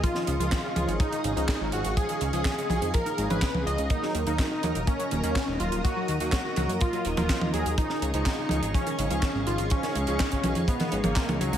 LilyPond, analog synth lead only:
\new Staff \with { instrumentName = "Analog synth lead" } { \time 4/4 \key des \mixolydian \tempo 4 = 124 f'8. f'8 f'8. ees'8. ees'8. ges'8 | aes'8. aes'8 aes'8. bes'8. ces''8. ees''8 | ees'8. ees'8 ees'8. des'8. des'8. f'8 | ges'8. ges'8 ges'8. f'8. f'8. aes'8 |
ees'8. ees'8 ees'8. des'8. des'8. f'8 | des'8. des'8 des'8. ces'8. bes8. ges8 | }